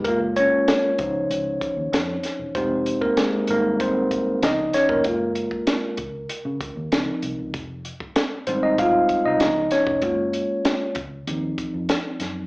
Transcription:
<<
  \new Staff \with { instrumentName = "Tine electric piano" } { \time 4/4 \key des \lydian \tempo 4 = 96 bes'8 <des' des''>4. r2 | <c' c''>8. <bes bes'>16 <aes aes'>8 <bes bes'>8 <c' c''>4 <ees' ees''>8 <des' des''>16 <bes bes'>16~ | <bes bes'>2~ <bes bes'>8. r4 r16 | r4. <c' c''>16 <ees' ees''>16 <f' f''>8. <ees' ees''>8. <des' des''>8~ |
<des' des''>8 r2. r8 | }
  \new Staff \with { instrumentName = "Tine electric piano" } { \time 4/4 \key des \lydian <aes bes f'>8 r4 <f ees' c''>8 r2 | <aes ees' g'>4. <g aes ees'>8 r4 <f ces'>4 | <aes bes f'>4. r4. <f c' ees'>8 r8 | r4. <g aes ees'>4. <f ces' ees'>4 |
<aes bes f'>4. r8 <f c' ees'>2 | }
  \new Staff \with { instrumentName = "Fingered electric bass" } { \clef bass \time 4/4 \key des \lydian ges,,8. r8. des,8 des,8 r16 ees,16 f,8 r16 e,,16 | f,,8. r8. aes,,4. des,8 r16 f,,16 | ges,,8. r8. des,8 r16 des16 des,16 ees,16 des,16 r16 c,16 des,16 | f,,8. r8. aes,,8 bes,,8 r16 c,16 des,8 r16 f,,16 |
ges,,8. r8. des,8 ees,8 r16 f,16 r8 ges,8 | }
  \new DrumStaff \with { instrumentName = "Drums" } \drummode { \time 4/4 <hh bd>8 hh8 <hh sn>8 <hh bd>8 hh8 <hh bd>8 <hh sn>8 <hh sn>8 | <hh bd>8 hh16 bd16 <hh sn>8 hh8 <hh bd>8 <hh bd>8 <hh sn>8 <hh sn>16 bd16 | <hh bd>8 hh16 bd16 <hh sn>8 <hh bd>8 hh8 <hh bd>8 <hh sn>8 hh8 | <hh bd>8 hh16 bd16 <hh sn>8 hh8 <hh bd>8 <hh bd>8 <hh sn>8 <hh sn>16 bd16 |
<hh bd>8 hh8 <hh sn>8 <hh bd>8 hh8 <hh bd>8 <hh sn>8 <hh sn>8 | }
>>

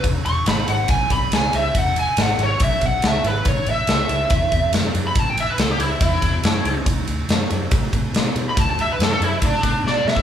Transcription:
<<
  \new Staff \with { instrumentName = "Lead electric guitar" } { \time 4/4 \key e \mixolydian \tempo 4 = 141 << { r8 cis'''8 b''8 fis''8 gis''8 b''8 gis''8 e''8 | fis''8 gis''8 fis''8 cis''8 e''8 fis''8 e''8 b'8 | cis''8 e''8 e''2 r8. b''16 | a''16 g''16 e''16 b'16 a'16 g'16 e'8 e'2 |
r2. r8. b''16 | a''16 a''16 e''16 b'16 a'16 a'16 e'8 d'2 | } \\ { r1 | r1 | r1 | r1 |
r1 | r2. d''8 e''8 | } >> }
  \new Staff \with { instrumentName = "Picked electric bass" } { \clef bass \time 4/4 \key e \mixolydian e,,8 e,,8 gis,,8 gis,,8 b,,8 b,,8 cis,8 cis,8 | e,,4 gis,,8 gis,,8 b,,8 b,,8 cis,8 gis,,8 | a,,8 a,,8 cis,8 cis,8 e,8 e,8 fis,8 fis,8 | a,,4 cis,8 cis,8 e,8 e,8 fis,8 cis,8 |
d,8 d,8 fis,8 fis,8 a,8 a,8 b,8 b,8 | d,4 fis,8 fis,8 a,8 a,8 b,8 b,8 | }
  \new DrumStaff \with { instrumentName = "Drums" } \drummode { \time 4/4 <bd cymr>8 cymr8 <cymr sn>8 cymr8 <bd cymr>8 <bd cymr>8 <cymr sn>8 cymr8 | <bd cymr>8 cymr8 <cymr sn>8 cymr8 <bd cymr>8 <bd cymr>8 <cymr sn>8 cymr8 | <bd cymr>8 cymr8 <cymr sn>8 cymr8 <bd cymr>8 <bd cymr>8 <cymr sn>8 cymr8 | <bd cymr>8 cymr8 <cymr sn>8 cymr8 <bd cymr>8 <bd cymr>8 <cymr sn>8 cymr8 |
<bd cymr>8 cymr8 <cymr sn>8 cymr8 <bd cymr>8 <bd cymr>8 <cymr sn>8 cymr8 | <bd cymr>8 cymr8 <cymr sn>8 cymr8 <bd cymr>8 <bd cymr>8 sn8 sn16 bd16 | }
>>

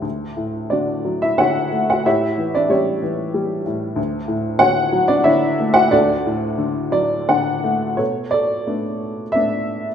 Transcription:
<<
  \new Staff \with { instrumentName = "Upright piano" } { \time 3/4 \key d \major \tempo 4 = 90 << { r4 <d' fis' d''>8. <e' e''>16 <fis' cis'' fis''>8. <fis' fis''>16 | <e' g' cis'' e''>8. <d' d''>16 <cis' g' cis''>4. r8 | r4 <fis' cis'' fis''>8. <d' d''>16 <e' cis'' e''>8. <fis' fis''>16 | <d' fis' a' d''>2 r4 |
\key b \minor <a' cis''>8 <a' d''>4. e''4 | } \\ { r2. | r2. | r2. | r4. d''8 fis''4 |
r2. | } >> }
  \new Staff \with { instrumentName = "Upright piano" } { \clef bass \time 3/4 \key d \major d,8 a,8 d8 fis8 d8 a8 | a,8 e8 g8 e8 g8 a,8 | d,8 a,8 d8 fis8 d8 a8 | d,8 a,8 d8 fis8 d8 a8 |
\key b \minor b,4 <a b d'>4 <a b d'>4 | }
>>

